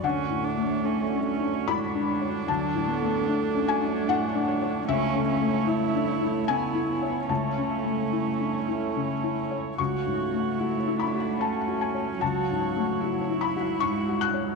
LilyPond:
<<
  \new Staff \with { instrumentName = "Harp" } { \time 3/4 \key d \lydian \tempo 4 = 74 d'16 fis'8 cis''16 d'8 fis'16 cis''16 d'16 cis''16 cis''16 fis'16 | d'16 fis'16 a'16 cis''16 d'8 fis'16 cis''16 d'16 cis''16 cis''16 fis'16 | e'16 cis''16 e''16 cis'''8 e''16 cis''4~ cis''16 cis''16~ | cis''16 cis''16 e''8. e''16 cis''4~ cis''16 cis''16 |
fis'8 cis''16 fis''16 fis'16 cis''8 fis''16 fis'16 fis''16 fis''8 | fis'8 cis''16 fis''16 fis'16 cis''8 fis''16 fis'16 fis''16 fis''8 | }
  \new Staff \with { instrumentName = "Felt piano" } { \time 3/4 \key d \lydian << { fis''2 b''4 | a''4. gis''8 fis''4 | e''2 gis''4 | a''2~ a''8 r8 |
cis'''4. b''8 a''8 gis''8 | a''4. b''8 cis'''8 fis'''8 | } \\ { \tuplet 3/2 { d,8 a,8 a8 d'8 cis'8 d'8 a,8 d'8 cis''8 } | \tuplet 3/2 { d,8 a,8 a8 d'8 cis'8 d'8 a,8 d'8 cis''8 } | \tuplet 3/2 { cis,8 cis8 a8 e'8 d'8 e'8 cis8 e'8 cis''8 } | \tuplet 3/2 { cis,8 cis8 a8 e'8 d'8 e'8 cis8 e'8 cis''8 } |
\tuplet 3/2 { cis,8 gis,8 a8 fis'8 e'8 fis'8~ fis'8 fis'8 cis''8 } | \tuplet 3/2 { cis,8 gis,8 a8 fis'8 e'8 fis'8 gis,8 fis'8 cis''8 } | } >> }
  \new Staff \with { instrumentName = "Harmonium" } { \time 3/4 \key d \lydian <d fis cis''>2.~ | <d fis cis''>2. | <a e' cis''>2.~ | <a e' cis''>2. |
<fis fis' cis''>2.~ | <fis fis' cis''>2. | }
  \new Staff \with { instrumentName = "Viola" } { \time 3/4 \key d \lydian cis'8 d'8 cis'8 cis'8 d'4~ | d'2. | cis'8 cis'8 e'4 e'4 | cis'2~ cis'8. r16 |
fis'4 e'8 d'8 cis'4 | fis'4 e'2 | }
  \new Staff \with { instrumentName = "Cello" } { \time 3/4 \key d \lydian a2 gis4 | fis8 b8 a2 | a2 b8 b8 | a2~ a8. r16 |
a2. | fis2 gis4 | }
>>